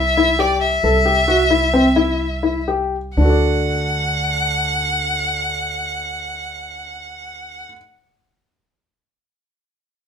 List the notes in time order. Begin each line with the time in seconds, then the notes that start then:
Already playing: C2 E5
0.17 E4
0.39 G4 D5
0.61 E5
0.83 C2 A4
1.05 G4
1.28 F#4
1.50 E4
1.74 C4
1.96 E4
2.43 E4
2.68 G4
3.17 D2 D4 F#5
3.21 F#4 A4
3.29 D5